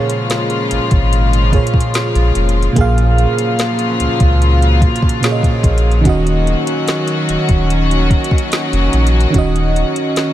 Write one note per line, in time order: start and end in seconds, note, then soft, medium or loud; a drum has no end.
0.00 1.47 A#2 medium
0.00 2.73 C#3 medium
0.00 2.73 F3 medium
0.00 2.73 G#3 medium
0.00 1.48 A#3 medium
0.00 10.33 A#3 medium
0.00 2.73 F4 medium
0.00 1.50 G#4 medium
0.00 1.54 C#5 medium
0.10 closed hi-hat medium
0.30 snare loud
0.30 closed hi-hat medium
0.50 closed hi-hat soft
0.71 0.79 G#1 soft
0.71 closed hi-hat medium
0.91 1.58 G#1 medium
0.91 kick loud
0.91 closed hi-hat soft
1.13 closed hi-hat medium
1.33 closed hi-hat medium
1.51 2.71 A#2 medium
1.51 2.74 A#3 medium
1.51 2.77 G#4 medium
1.51 kick loud
1.51 closed hi-hat soft
1.56 2.78 C#5 medium
1.67 closed hi-hat medium
1.74 kick medium
1.81 closed hi-hat medium
1.94 snare loud
1.94 closed hi-hat medium
2.15 2.32 A#1 medium
2.15 closed hi-hat soft
2.35 2.69 F1 medium
2.35 closed hi-hat medium
2.49 closed hi-hat medium
2.63 closed hi-hat soft
2.73 3.26 A#1 loud
2.73 5.17 A#2 medium
2.73 6.02 C#3 medium
2.73 6.02 F3 medium
2.73 10.33 F#3 medium
2.73 5.18 A#3 medium
2.73 6.02 F4 medium
2.73 kick loud
2.73 closed hi-hat medium
2.78 5.20 G#4 medium
2.78 5.21 F5 medium
2.98 closed hi-hat medium
3.18 closed hi-hat medium
3.38 closed hi-hat medium
3.59 snare loud
3.59 closed hi-hat medium
3.79 closed hi-hat medium
4.00 4.08 C#2 soft
4.00 closed hi-hat medium
4.20 4.87 C#2 medium
4.20 kick loud
4.20 closed hi-hat soft
4.42 closed hi-hat medium
4.62 closed hi-hat medium
4.82 kick loud
4.82 closed hi-hat soft
4.96 closed hi-hat medium
5.02 kick medium
5.09 closed hi-hat medium
5.21 6.04 A#2 medium
5.21 6.05 A#3 medium
5.21 6.05 G#4 medium
5.21 snare loud
5.21 closed hi-hat medium
5.25 5.30 C#5 medium
5.32 6.08 D#5 medium
5.43 kick medium
5.43 closed hi-hat soft
5.63 6.07 A#1 medium
5.63 kick loud
5.63 closed hi-hat medium
5.78 closed hi-hat medium
5.92 closed hi-hat soft
6.01 9.28 D#3 medium
6.01 9.29 C#4 medium
6.05 6.55 D#1 loud
6.05 10.33 D#3 medium
6.05 10.33 C#4 medium
6.05 10.33 F#4 medium
6.05 9.31 F#4 medium
6.05 kick loud
6.05 closed hi-hat medium
6.09 9.32 D#5 medium
6.27 closed hi-hat medium
6.47 closed hi-hat soft
6.67 closed hi-hat medium
6.88 snare loud
6.88 closed hi-hat medium
7.08 closed hi-hat medium
7.29 7.37 D#1 medium
7.29 closed hi-hat medium
7.49 8.16 D#1 medium
7.49 kick loud
7.49 closed hi-hat soft
7.70 closed hi-hat medium
7.91 closed hi-hat medium
8.10 kick loud
8.10 closed hi-hat soft
8.24 closed hi-hat medium
8.31 kick medium
8.38 closed hi-hat medium
8.52 snare loud
8.52 closed hi-hat medium
8.73 8.89 F1 medium
8.73 closed hi-hat soft
8.93 9.26 A#1 loud
8.93 closed hi-hat medium
9.07 closed hi-hat medium
9.20 closed hi-hat soft
9.30 10.33 D#3 medium
9.30 10.33 C#4 medium
9.30 kick loud
9.34 9.84 D#1 loud
9.34 10.33 F#4 medium
9.34 closed hi-hat medium
9.38 10.33 D#5 medium
9.56 closed hi-hat soft
9.76 closed hi-hat medium
9.96 closed hi-hat medium
10.16 snare loud
10.16 closed hi-hat medium